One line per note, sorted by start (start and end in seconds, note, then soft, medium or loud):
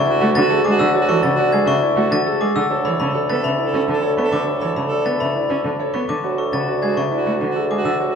0.00 2.55 D2 medium
0.00 0.10 E5 medium
0.00 0.10 C#6 loud
0.06 0.25 E4 medium
0.06 0.31 F#4 medium
0.06 0.25 D5 loud
0.21 0.32 A3 medium
0.21 0.40 F#4 medium
0.35 0.47 D3 medium
0.35 0.55 F#5 medium
0.35 0.54 A6 loud
0.41 0.62 F#4 medium
0.50 0.69 G#4 loud
0.50 0.69 A4 medium
0.65 0.76 G#3 medium
0.65 0.84 G#4 medium
0.65 0.84 D6 medium
0.71 0.92 F#4 medium
0.79 0.90 D3 medium
0.79 0.98 F#5 medium
0.79 0.98 E6 medium
0.94 1.13 F#4 medium
0.94 1.13 C#5 medium
1.01 1.23 F#4 medium
1.08 1.20 E3 medium
1.08 1.28 A4 medium
1.08 1.28 C#6 medium
1.23 1.34 C#3 medium
1.23 1.42 F#5 medium
1.23 1.42 A6 loud
1.32 1.54 F#4 medium
1.38 1.57 F#4 medium
1.38 1.57 D5 medium
1.52 1.63 G#3 medium
1.52 1.72 G#4 medium
1.52 1.72 G#6 medium
1.63 1.78 C#3 medium
1.63 1.85 F#4 medium
1.67 1.86 E5 medium
1.67 1.87 C#6 loud
1.81 2.01 E4 medium
1.81 2.01 D5 medium
1.94 2.08 A3 medium
1.94 2.16 F#4 medium
2.11 2.22 D3 medium
2.11 2.31 F#5 medium
2.11 2.31 A6 loud
2.25 2.47 F#4 soft
2.25 2.46 G#4 loud
2.25 2.45 A4 medium
2.41 2.52 G#3 medium
2.41 2.60 G#4 medium
2.41 2.60 D6 medium
2.56 2.67 D3 medium
2.56 2.75 F#5 medium
2.56 2.75 E6 medium
2.70 6.07 D2 medium
2.70 2.90 A4 medium
2.70 2.92 A4 soft
2.70 2.89 C#5 medium
2.85 2.96 E3 medium
2.85 3.04 C#5 medium
2.85 2.98 B5 medium
3.00 3.11 C#3 medium
3.00 3.23 A4 medium
3.00 3.19 A5 medium
3.00 3.19 B5 medium
3.14 3.34 A4 medium
3.14 3.33 D5 medium
3.29 3.41 B3 medium
3.29 3.53 A4 medium
3.29 3.48 B4 medium
3.29 3.48 A6 medium
3.43 3.56 C#3 medium
3.43 3.63 E5 medium
3.43 3.63 B5 medium
3.58 3.78 E4 medium
3.58 3.84 A4 medium
3.58 3.78 D5 medium
3.73 3.85 C#4 medium
3.73 3.92 A4 medium
3.88 3.99 D3 medium
3.88 4.07 A5 medium
3.93 4.15 A4 medium
4.03 4.22 A4 medium
4.03 4.22 C#5 medium
4.17 4.28 B3 medium
4.17 4.37 B4 medium
4.17 4.37 C#6 medium
4.23 4.45 A4 medium
4.32 4.43 D3 medium
4.32 4.52 A5 medium
4.32 4.51 D6 medium
4.47 4.66 A4 medium
4.47 4.66 C#5 medium
4.54 4.76 A4 medium
4.61 4.72 E3 medium
4.61 4.81 C#5 medium
4.61 4.75 B5 medium
4.76 4.87 C#3 medium
4.76 4.96 A5 medium
4.76 4.95 B5 medium
4.85 5.07 A4 medium
4.91 5.10 A4 medium
4.91 5.10 D5 medium
5.05 5.16 B3 medium
5.05 5.25 B4 medium
5.05 5.25 A6 medium
5.16 5.37 A4 medium
5.20 5.32 C#3 medium
5.20 5.40 E5 medium
5.20 5.40 B5 medium
5.35 5.54 E4 medium
5.35 5.55 D5 medium
5.47 5.61 C#4 medium
5.47 5.69 A4 soft
5.47 5.69 A4 medium
5.64 5.75 D3 medium
5.64 5.84 A5 medium
5.77 5.99 A4 soft
5.77 5.99 A4 medium
5.77 5.98 C#5 medium
5.94 6.05 B3 medium
5.94 6.13 B4 medium
5.94 6.13 C#6 medium
6.08 6.20 D3 medium
6.08 6.28 A5 medium
6.08 6.28 D6 medium
6.23 8.15 D2 medium
6.23 6.45 F#4 soft
6.23 6.43 F#4 medium
6.23 6.43 C#5 medium
6.38 6.57 A4 medium
6.38 6.57 C#6 medium
6.53 6.64 C#3 medium
6.53 6.76 F#4 medium
6.53 6.72 F#5 medium
6.53 6.72 A6 medium
6.68 6.87 F#4 medium
6.68 6.87 D5 medium
6.82 6.93 G#3 medium
6.82 7.06 F#4 medium
6.82 7.01 G#4 medium
6.82 7.01 G#6 medium
6.97 7.08 C#3 medium
6.97 7.16 E5 medium
6.97 7.16 C#6 medium
7.12 7.31 E4 medium
7.12 7.37 F#4 medium
7.12 7.31 D5 medium
7.26 7.37 A3 medium
7.26 7.45 F#4 medium
7.41 7.52 D3 medium
7.41 7.60 F#5 medium
7.47 7.68 F#4 medium
7.56 7.75 G#4 medium
7.56 7.75 A4 medium
7.70 7.81 G#3 medium
7.70 7.90 G#4 medium
7.70 7.90 D6 medium
7.77 7.98 F#4 medium
7.85 7.96 D3 medium
7.85 8.04 F#5 medium
7.85 8.04 E6 medium
8.00 8.15 F#4 medium
8.00 8.15 C#5 medium
8.08 8.15 F#4 medium